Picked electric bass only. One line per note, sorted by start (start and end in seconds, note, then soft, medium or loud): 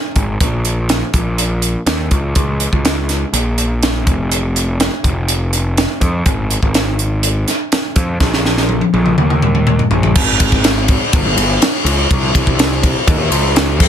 0.16 0.36 G#1 medium
0.40 1.01 A#1 loud
1.14 1.75 A#1 medium
1.86 2.09 D#2 medium
2.11 2.33 C#2 medium
2.36 2.66 C#2 medium
2.73 3.24 C#2 medium
3.33 4.07 A#1 medium
4.07 4.88 F1 medium
5.04 5.85 F1 medium
6.01 6.22 F2 loud
6.26 6.56 G#1 medium
6.62 7.44 G#1 medium
7.96 8.17 F2 medium
8.20 8.81 A#1 loud
8.94 9.14 A#1 medium
9.18 9.79 D#2 loud
9.91 10.11 A#1 loud
10.15 10.97 G#1 loud
11.13 11.23 G1 loud
11.25 11.35 G1 loud
11.37 11.57 G1 medium
11.85 12.05 C#2 loud
12.10 12.30 C2 loud
12.35 12.95 C2 medium
13.07 13.17 D#2 loud
13.18 13.28 D#2 loud
13.30 13.80 C#2 medium
13.80 13.88 F2 loud